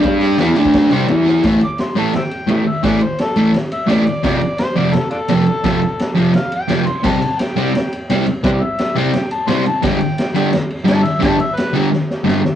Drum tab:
CC |----------------|----------------|----------------|----------------|
RD |x-x-x-x-x-x-x---|x-x-x-x-x-x-x-x-|x-x-x-x-x-x-x-x-|x-x-x-x-x-x-x-x-|
SD |o---o---o---o-o-|o---o---o---o---|o---o---o---o---|o---o---o---o---|
BD |o------oo-------|o---------------|o---------------|o---------------|

CC |----------------|x---------------|----------------|----------------|
RD |x-x-x-x-x-x-x-x-|--x-x-x-x-x-x-x-|x-x-x-x-x-x-x-x-|x-x-x-x-x-x-x-x-|
SD |o---o---o---o---|o---o---o---o---|o---o---o---o---|o---o---o---o---|
BD |o---------------|o---------------|o---------------|o---------------|

CC |----------------|
RD |x-x-x-x---------|
SD |o---o---o-o-o-o-|
BD |o---------------|